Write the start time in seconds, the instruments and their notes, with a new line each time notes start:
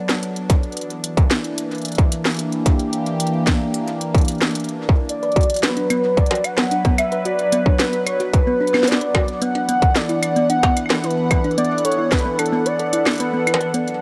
Already playing: analog synth pad F#3 B3 D4 A4 D5
0.09 snare, closed hi-hat
0.23 closed hi-hat
0.36 closed hi-hat
0.50 kick, closed hi-hat
0.63 closed hi-hat
0.72 closed hi-hat
0.77 analog synth pad E3, closed hi-hat
0.81 closed hi-hat
0.90 closed hi-hat
1.04 analog synth pad A#3, closed hi-hat
1.17 kick, closed hi-hat
1.31 snare, closed hi-hat
1.44 closed hi-hat
1.58 closed hi-hat
1.71 closed hi-hat
1.75 closed hi-hat
1.78 closed hi-hat
1.82 closed hi-hat
1.85 closed hi-hat
1.88 closed hi-hat
1.92 closed hi-hat
1.95 kick, closed hi-hat
1.98 closed hi-hat
2.11 analog synth pad G4, closed hi-hat
2.25 snare, closed hi-hat
2.28 closed hi-hat
2.30 closed hi-hat
2.32 closed hi-hat
2.34 closed hi-hat
2.37 closed hi-hat
2.39 closed hi-hat
2.52 closed hi-hat
2.66 kick, closed hi-hat
2.79 closed hi-hat
2.93 closed hi-hat
3.06 closed hi-hat
3.20 closed hi-hat
3.27 closed hi-hat
3.47 kick, snare, closed hi-hat
3.74 closed hi-hat
3.88 closed hi-hat
4.01 closed hi-hat
4.15 kick, closed hi-hat
4.18 closed hi-hat
4.21 closed hi-hat
4.25 closed hi-hat
4.28 closed hi-hat
4.32 closed hi-hat
4.35 closed hi-hat
4.38 snare, closed hi-hat
4.42 closed hi-hat
4.46 closed hi-hat
4.51 closed hi-hat
4.55 closed hi-hat
4.60 closed hi-hat
4.64 closed hi-hat
4.69 closed hi-hat
4.89 kick
5.09 analog synth pad F#3, soft synth lead D5, closed hi-hat
5.23 synth arpeggio sound B4, closed hi-hat
5.32 analog synth pad B3, closed hi-hat
5.36 synth arpeggio sound F#4, kick, closed hi-hat
5.41 closed hi-hat
5.43 closed hi-hat
5.50 closed hi-hat
5.54 closed hi-hat
5.56 closed hi-hat
5.59 closed hi-hat
5.63 synth arpeggio sound B3, soft synth lead B4, snare, closed hi-hat
5.77 synth arpeggio sound D4, closed hi-hat
5.88 synth arpeggio sound B3, analog synth pad B4, closed hi-hat, claves
5.93 analog synth pad D4
6.17 synth arpeggio sound B4, soft synth lead D5, kick, closed hi-hat
6.24 analog synth pad F#5, closed hi-hat
6.31 synth arpeggio sound F#4, closed hi-hat, struck metal
6.35 closed hi-hat
6.44 soft synth lead F#5, closed hi-hat, claves
6.58 synth arpeggio sound B3, snare, struck metal
6.71 synth arpeggio sound D4, closed hi-hat
6.85 synth arpeggio sound B3, kick, closed hi-hat
6.98 soft synth lead E5, closed hi-hat, claves
7.12 synth arpeggio sound B4, closed hi-hat
7.25 synth arpeggio sound F#4, soft synth lead D5, closed hi-hat
7.39 closed hi-hat
7.52 synth arpeggio sound B3, closed hi-hat
7.66 synth arpeggio sound D4, soft synth lead C#5, kick
7.79 synth arpeggio sound B3, soft synth lead B4, snare, closed hi-hat
7.93 closed hi-hat
8.07 synth arpeggio sound B4, soft synth lead C#5, closed hi-hat, claves
8.20 synth arpeggio sound F#4, closed hi-hat
8.33 soft synth lead B4, kick, closed hi-hat
8.47 synth arpeggio sound B3
8.61 synth arpeggio sound D4
8.67 closed hi-hat
8.74 synth arpeggio sound B3, snare, claves
8.83 snare
8.88 soft synth lead D5, closed hi-hat
8.92 snare
9.01 synth arpeggio sound B4, closed hi-hat
9.15 synth arpeggio sound F#4, kick, struck metal, claves
9.28 closed hi-hat
9.42 analog synth pad E3, synth arpeggio sound B3, soft synth lead F#5, closed hi-hat
9.55 synth arpeggio sound D4, closed hi-hat
9.69 synth arpeggio sound B3, closed hi-hat
9.82 kick, closed hi-hat
9.96 synth arpeggio sound A4, soft synth lead D5, snare, closed hi-hat
10.09 synth arpeggio sound E4, closed hi-hat
10.23 closed hi-hat, claves
10.36 synth arpeggio sound B3, closed hi-hat
10.50 synth arpeggio sound D4, analog synth pad A4, soft synth lead F#5, closed hi-hat
10.63 synth arpeggio sound B3, kick, closed hi-hat, struck metal
10.77 closed hi-hat, claves
10.86 claves
10.90 synth arpeggio sound A4, snare, closed hi-hat, struck metal
10.95 claves
11.04 synth arpeggio sound E4, soft synth lead B4, closed hi-hat
11.10 closed hi-hat
11.31 synth arpeggio sound B3, kick, closed hi-hat, claves
11.44 synth arpeggio sound D4, closed hi-hat
11.51 closed hi-hat
11.58 synth arpeggio sound B3, soft synth lead D5, closed hi-hat
11.65 closed hi-hat
11.78 closed hi-hat
11.85 synth arpeggio sound A4, soft synth lead C#5, closed hi-hat
11.92 closed hi-hat
11.98 synth arpeggio sound E4
12.12 soft synth lead B4, kick, snare, closed hi-hat
12.19 closed hi-hat
12.25 synth arpeggio sound B3
12.39 synth arpeggio sound D4, soft synth lead A4, closed hi-hat, claves
12.46 closed hi-hat
12.53 synth arpeggio sound B3
12.66 soft synth lead D5, closed hi-hat
12.79 synth arpeggio sound A4, closed hi-hat
12.93 synth arpeggio sound E4, closed hi-hat
13.06 snare, closed hi-hat, claves
13.09 closed hi-hat
13.11 closed hi-hat
13.13 closed hi-hat
13.16 closed hi-hat
13.18 closed hi-hat
13.20 synth arpeggio sound B3, soft synth lead B4, closed hi-hat
13.34 synth arpeggio sound B3
13.47 synth arpeggio sound E4, closed hi-hat, claves
13.54 struck metal
13.61 synth arpeggio sound B4, closed hi-hat
13.74 analog synth pad F#3, synth arpeggio sound B3, soft synth lead D5, closed hi-hat
13.88 closed hi-hat